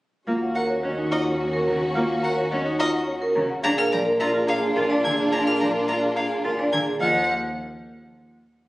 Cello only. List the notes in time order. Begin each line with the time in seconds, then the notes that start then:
0.27 A#3
0.83 C#4
1.68 C#3
1.95 A#3
2.52 C#4
3.36 C#3
3.64 D4
3.92 F3
4.20 F4
4.76 F4
4.90 D4
5.04 D3
5.32 D4
5.60 F3
5.88 F4
6.44 F4
6.58 D4
6.72 D3
7.00 F3